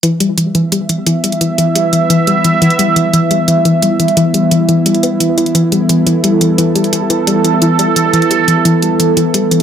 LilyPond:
<<
  \new Staff \with { instrumentName = "Analog synth pad" } { \time 4/4 \key e \minor \tempo 4 = 174 << { e''1~ | e''1~ | e''1~ | e''1 |
a'1~ | a'1~ | a'1 | } \\ { <e b e'>1~ | <e b e'>1~ | <e b e'>1~ | <e b e'>1~ |
<e b e'>1~ | <e b e'>1~ | <e b e'>1 | } >> }
  \new Staff \with { instrumentName = "Synth pluck" } { \clef bass \time 4/4 \key e \minor e8 g8 e8 e8 g8 e8 e8 g8 | e8 e8 g8 e8 e8 g8 e8 e8 | g8 e8 e8 g8 e8 e8 g8 e8 | e8 g8 e8 e8 g8 b8 e8 e'8 |
e8 g8 e8 e8 g8 e8 e8 g8 | e8 e8 g8 e8 e8 g8 e8 e8 | g8 e8 e8 g8 e8 e8 g8 e8 | }
  \new DrumStaff \with { instrumentName = "Drums" } \drummode { \time 4/4 hh8 hh8 hh8 hh8 hh8 hh8 hh8 hh16 hh16 | hh8 hh8 hh8 hh8 hh8 hh8 hh8 hh16 hh16 | hh8 hh8 hh8 hh8 hh8 hh8 hh8 hh16 hh16 | hh8 hh8 hh8 hh8 hh16 hh16 hh8 hh8 hh16 hh16 |
hh8 hh8 hh8 hh8 hh8 hh8 hh8 hh16 hh16 | hh8 hh8 hh8 hh8 hh8 hh8 hh8 hh16 hh16 | hh8 hh8 hh8 hh8 hh8 hh8 hh8 hh8 | }
>>